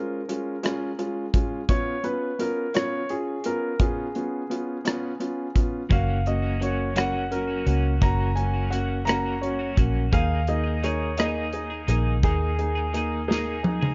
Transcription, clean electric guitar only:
5.89 F#2 C#3 F#3 A#3 C#4 F#4
6.06 F#3 A#3 C#4 F#4
6.42 F#3 A#3 C#4 F#4
6.60 F#3 A#3 C#4 F#4
6.95 F#2 C#3 F#3 A#3 C#4 F#4
7.12 F#3 A#3 C#4 F#4
7.47 F#3 A#3 C#4 F#4
7.65 F#3 A#3 C#4 F#4
8.01 F#2 C#3 F#3 A#3 C#4 F#4
8.18 F#3 A#3 C#4 F#4
8.54 F#3 A#3 C#4 F#4
8.71 F#3 A#3 C#4 F#4
9.06 F#2 C#3 F#3 A#3 C#4 F#4
9.24 F#3 A#3 C#4 F#4
9.59 F#3 A#3 C#4 F#4
9.76 F#3 A#3 C#4 F#4
10.11 D#3 A#3 D#4 G#4
10.29 A#3 D#4 G#4
10.64 A#3 D#4 G#4
10.82 D#3 A#3 D#4 G#4
11.17 D#3 A#3 D#4 G#4
11.35 A#3 D#4 G#4
11.70 A#3 D#4 G#4
11.87 D#3 A#3 D#4 G#4
12.23 D#3 A#3 D#4 G#4
12.40 A#3 D#4 G#4
12.75 A#3 D#4 G#4
12.93 D#3 A#3 D#4 G#4
13.28 D#3 A#3 D#4 G#4
13.46 A#3 D#4 G#4
13.81 A#3 D#4 G#4

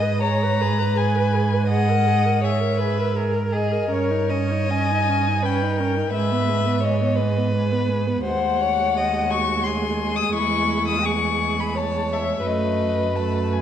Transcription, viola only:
0.02 B4
0.22 G#4
0.43 B4
0.62 G#4
0.79 B4
0.98 G#4
1.16 B4
1.34 G#4
1.53 B4
1.71 G#4
1.89 A#4
2.07 G#4
2.25 A#4
2.43 G#4
2.60 A#4
2.80 G#4
2.98 A#4
3.17 G#4
3.34 A#4
3.52 G#4
3.72 A#4
3.90 C#4
4.11 D#4
4.31 C#4
4.51 D#4
4.72 C#4
4.91 D#4
5.09 C#4
5.28 D#4
5.45 C#4
5.62 D#4
5.80 C#4
5.97 D#4
6.14 G#3
6.31 B3
6.49 G#3
6.66 B3
6.84 G#3
7.01 B3
7.19 G#3
7.37 B3
7.55 G#3
7.72 B3
7.89 G#3
8.07 B3
8.24 G#3
12.46 A3
13.17 A3

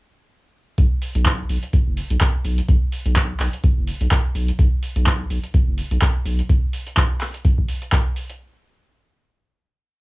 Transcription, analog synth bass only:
0.78 B1
1.15 B1
1.50 B1
1.87 F#1
2.11 B1
2.45 B1
2.69 B1
3.06 B1
3.40 B1
3.77 F#1
4.01 B1
4.35 B1
4.59 B1
4.96 B1
5.30 B1
5.67 F#1
5.91 B1
6.25 B1

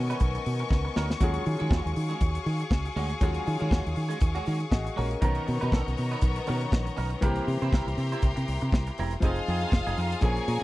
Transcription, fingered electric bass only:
Already playing: B2
0.21 B1
0.46 B2
0.71 C#2
0.97 D2
1.21 D#2
1.47 D#3
1.61 D#3
1.71 D#2
1.86 D#2
1.97 D#3
2.21 D#2
2.46 D#3
2.71 C#2
2.96 D2
3.21 D#2
3.47 D#3
3.62 D#3
3.71 D#2
3.87 D#2
3.97 D#3
4.22 D#2
4.47 D#3
4.72 A1
4.98 A#1
5.22 B1
5.48 B2
5.63 B2
5.72 B1
5.88 B1
5.99 B2
6.22 B1
6.49 B2
6.72 A#1
6.98 B1
7.23 C2
7.48 C3
7.62 C3
7.73 C2
7.87 C2
7.98 C3
8.23 C2
8.37 C3
8.48 C2
8.62 C3
8.73 C2
8.99 E1
9.23 F1
9.48 F2
9.72 F1
9.87 F1
9.98 F2
10.22 A#1
10.48 A#2

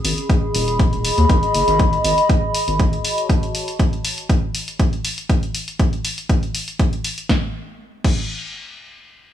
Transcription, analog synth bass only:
0.04 G#1
0.55 D#1
1.18 D#2
1.30 G#1
1.55 F#1
1.68 G#1
2.04 G#1
2.68 G#1

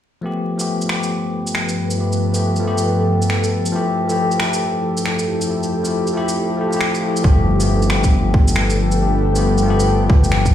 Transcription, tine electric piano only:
0.21 F3 A3 B3
0.26 G4
0.57 F3 A3 B3 G4
0.85 F3 A3
0.91 B3 G4
1.96 F3 A3 B3
2.00 G4
2.32 F3 A3 B3 G4
2.60 F3 A3
2.65 B3 G4
3.72 F3 A3 E4 G4
4.07 F3 A3 E4
4.12 G4
4.35 F3 A3
4.41 E4 G4
5.47 F3 A3 E4
5.51 G4
5.84 F3 A3 E4
5.88 G4
6.13 F3 A3 E4 G4
6.57 F3 A3 E4
6.61 G4
6.68 F3 A3
6.74 E4 G4
7.22 F3 A3 B3 G4
7.59 F3 A3 B3 G4
7.86 F3 A3
7.92 B3 G4
8.98 F3 A3 B3 G4
9.34 F3 A3 B3 G4
9.62 F3 A3
9.68 B3 G4

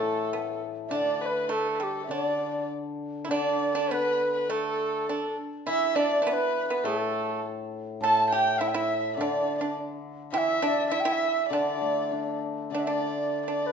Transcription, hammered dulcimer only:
Already playing: A2
0.02 E3
0.33 A3
0.90 D3
2.09 D3
3.29 D3
5.67 E3
6.84 A2
8.01 A2
9.17 D3
10.32 E3
11.50 D3
11.81 A3
12.12 D4
12.71 D3

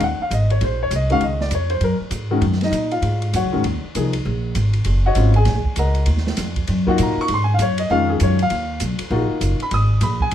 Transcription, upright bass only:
0.02 D#2
0.20 muted upright bass stroke
0.31 G#1
0.61 A#1
0.91 C2
1.21 C#2
1.51 F2
1.81 F#2
2.00 muted upright bass stroke
2.11 G#2
2.41 F#2
2.72 A#2
3.02 G#2
3.34 F#2
3.44 C#2
3.54 G#1
3.64 D#2
3.84 muted upright bass stroke
3.95 C2
4.25 A#1
4.55 G#1
4.85 F#1
5.16 G#1
5.46 A#1
5.65 muted upright bass stroke
5.77 C#2
6.07 D#2
6.38 F2
6.68 F#2
6.99 A#2
7.17 muted upright bass stroke
7.29 G#2
7.58 F#2
7.90 F2
8.21 F#2
8.51 D#2
8.81 B1
9.00 muted upright bass stroke
9.11 A#1
9.31 muted upright bass stroke
9.41 F#1
9.60 muted upright bass stroke
9.71 G#1
10.01 A#1

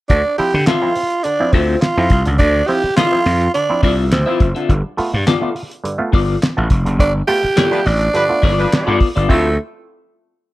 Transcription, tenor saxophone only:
0.09 D4
0.38 G4
0.66 F4
1.24 D4
1.52 C4
1.81 F4
2.39 D4
2.67 G4
2.96 F4
3.54 D4
3.83 D4
4.12 C4
7.00 D4
7.27 G4
7.86 D4
9.30 A3

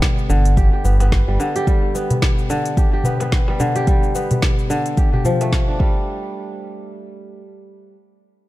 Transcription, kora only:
Already playing: D3 G3 B3 G4
0.30 D3
0.57 G4
0.73 G4
0.85 B3
1.01 B3
1.28 G3
1.40 D3
1.56 G4
1.67 G3
1.95 B3
2.50 D3
2.77 G4
2.93 G4
3.05 B3
3.21 B3
3.48 G3
3.60 D3
3.76 G4
3.88 G3
4.15 B3
4.70 D3
4.98 G4
5.13 G4
5.25 F3
5.41 A3
5.69 D4
5.80 G3

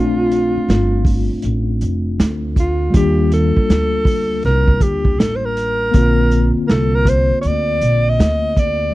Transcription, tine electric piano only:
Already playing: A3 C4 D4 F4
2.90 G3 A#3 D4
2.96 F4
5.91 A#3 C4
5.96 D3 F4

